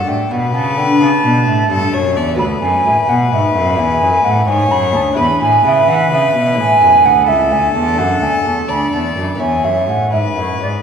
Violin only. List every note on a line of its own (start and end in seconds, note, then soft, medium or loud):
0.00 0.33 A4 medium
0.31 1.69 B4 medium
1.69 1.95 A4 medium
1.93 2.18 C#5 medium
2.16 2.38 D5 medium
2.39 4.44 B4 medium
4.48 5.18 C#5 loud
5.17 7.26 B4 medium
7.27 8.71 A4 medium
8.69 9.41 D5 medium
9.39 10.11 C#5 medium
10.11 10.82 B4 medium